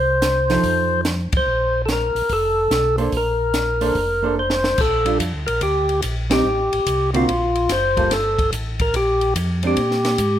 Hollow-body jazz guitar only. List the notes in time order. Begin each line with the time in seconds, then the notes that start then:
0.49 F3 D#4 A4 C5
2.98 A#3 D4 A4 C5
3.81 A#3 D4 A4 C5
4.22 A#3 D4 A4 C5
5.05 G3 D4 F4
6.30 G3 C4 D#4
7.13 D3 A#3 C4 F#4
7.97 G3 A#3 F4 A4
9.63 G#3 C4 D4